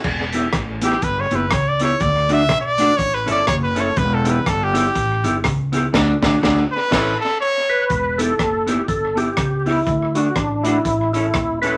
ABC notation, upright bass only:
X:1
M:4/4
L:1/8
Q:"Swing" 1/4=122
K:Edor
V:1 name="Upright bass" clef=bass
E,,,2 A,,,2 G,,, F,,, C,,2 | D,,2 B,,,2 A,,, G,,, F,,,2 | E,,,2 G,,,2 A,,, G,,, C,,2 | D,, D,, D,, z A,,, z3 |
E,,,2 F,,,2 G,,,2 C,,2 | D,,2 A,,,2 A,,,2 ^D,,,2 |]